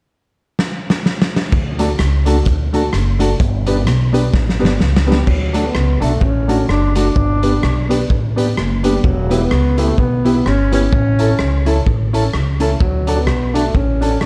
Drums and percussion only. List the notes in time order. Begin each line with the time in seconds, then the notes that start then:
0.59 snare
0.90 snare
1.06 snare
1.22 snare
1.36 snare
1.52 kick, crash
1.79 closed hi-hat
1.99 cross-stick, closed hi-hat
2.26 closed hi-hat
2.45 kick, closed hi-hat
2.74 closed hi-hat
2.93 cross-stick, closed hi-hat
3.20 closed hi-hat
3.40 kick, closed hi-hat
3.67 closed hi-hat
3.87 cross-stick, closed hi-hat
4.14 closed hi-hat
4.34 kick, snare
4.49 snare
4.65 snare
4.80 snare
4.96 snare
5.12 snare
5.27 kick, crash
5.54 closed hi-hat
5.75 cross-stick
6.02 closed hi-hat
6.21 kick
6.49 closed hi-hat
6.69 cross-stick
6.95 closed hi-hat
7.16 kick
7.43 closed hi-hat
7.63 cross-stick
7.91 closed hi-hat
8.10 kick
8.38 closed hi-hat
8.57 cross-stick
8.84 closed hi-hat
9.04 kick
9.31 closed hi-hat
9.51 cross-stick
9.78 closed hi-hat
9.98 kick
10.25 closed hi-hat
10.46 cross-stick
10.72 closed hi-hat
10.93 kick
11.19 closed hi-hat
11.39 cross-stick
11.66 closed hi-hat
11.87 kick
12.14 closed hi-hat
12.33 cross-stick
12.60 closed hi-hat
12.80 kick
13.07 closed hi-hat
13.27 cross-stick
13.55 closed hi-hat
13.75 kick
14.02 closed hi-hat
14.21 cross-stick